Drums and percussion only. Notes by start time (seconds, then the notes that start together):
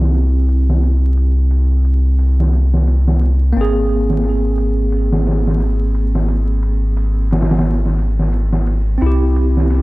0.01 snare
0.14 ride
0.49 ride
0.69 snare
0.83 ride
1.17 ride
1.51 ride
1.85 ride
2.19 ride
2.40 snare
2.53 ride
2.74 snare
2.87 ride
3.08 snare
3.21 ride
3.55 ride
3.89 ride
4.10 snare
4.24 ride
4.58 ride
4.92 ride
5.12 snare
5.27 snare, open hi-hat
5.47 snare
5.60 ride
5.95 ride
6.15 snare
6.28 ride
6.63 ride
6.97 ride
7.31 snare, ride
7.41 snare, ride
7.49 snare, ride
7.57 snare, ride
7.65 ride
7.86 snare
7.99 ride
8.19 snare
8.33 ride
8.53 snare
8.67 ride
9.01 ride
9.36 ride
9.57 snare
9.70 ride